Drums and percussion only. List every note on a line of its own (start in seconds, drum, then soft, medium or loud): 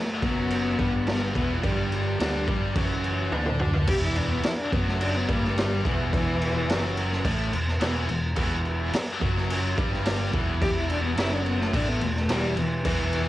0.22 kick loud
0.22 crash medium
0.50 crash medium
0.79 kick loud
0.79 crash medium
1.06 snare loud
1.06 crash medium
1.35 kick loud
1.35 crash medium
1.63 kick loud
1.63 crash medium
1.92 crash medium
2.20 snare loud
2.20 crash medium
2.48 kick loud
2.48 crash medium
2.76 kick loud
2.76 crash medium
3.04 crash medium
3.32 high tom medium
3.46 mid tom medium
3.60 mid tom medium
3.73 floor tom loud
3.88 kick loud
3.88 crash loud
4.16 crash medium
4.44 snare loud
4.44 crash loud
4.73 kick loud
4.73 crash medium
4.88 snare soft
5.01 crash medium
5.29 kick loud
5.29 crash medium
5.44 snare soft
5.58 snare loud
5.58 crash medium
5.85 kick loud
5.85 crash medium
6.13 kick loud
6.13 crash medium
6.42 crash medium
6.69 snare loud
6.69 crash medium
6.97 crash medium
7.12 snare soft
7.25 kick loud
7.25 crash medium
7.53 crash medium
7.68 snare soft
7.81 snare loud
7.81 crash medium
8.09 crash medium
8.36 kick loud
8.36 crash loud
8.65 crash medium
8.93 snare loud
8.93 crash loud
9.21 kick loud
9.21 crash medium
9.37 snare soft
9.50 crash loud
9.78 kick loud
9.78 crash medium
9.93 snare soft
10.05 snare loud
10.05 crash medium
10.33 kick loud
10.33 crash medium
10.62 kick loud
10.62 crash medium
10.90 crash medium
11.17 snare loud
11.17 crash medium
11.46 crash medium
11.61 snare soft
11.73 kick loud
11.73 crash loud
12.01 crash medium
12.16 snare soft
12.29 snare loud
12.29 crash medium
12.57 crash medium
12.85 kick loud
12.85 crash medium
13.13 crash medium